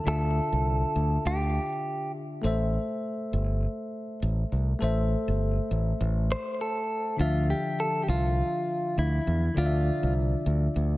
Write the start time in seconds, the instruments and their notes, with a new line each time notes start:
0.04 fingered electric bass D2, tine electric piano D3 D4 F4, clean electric guitar A4
0.09 tine electric piano E5
0.53 fingered electric bass C2
0.96 fingered electric bass D2
1.25 fingered electric bass D2, clean electric guitar G4
2.42 fingered electric bass A1, tine electric piano A3 A4 C5
2.47 tine electric piano E5
3.33 fingered electric bass G1
4.22 fingered electric bass A1
4.52 fingered electric bass C2
4.79 fingered electric bass A1, tine electric piano A3 A4 C5
4.84 tine electric piano E5
5.28 fingered electric bass G1
5.71 fingered electric bass A1
6.01 fingered electric bass A1
6.32 clean electric guitar C5
6.61 clean electric guitar A4
7.17 fingered electric bass D2, tine electric piano D3 F3 D4, clean electric guitar F4
7.22 tine electric piano E5
7.50 clean electric guitar G4
7.80 clean electric guitar A4
8.03 clean electric guitar G4
8.08 fingered electric bass C2, clean electric guitar F4
8.98 fingered electric bass D2, clean electric guitar E4
9.27 fingered electric bass E2
9.55 fingered electric bass D2, tine electric piano D3 D4 F4, clean electric guitar F4
9.60 tine electric piano D5
9.66 tine electric piano E5
10.03 fingered electric bass C2
10.46 fingered electric bass D2
10.76 fingered electric bass D2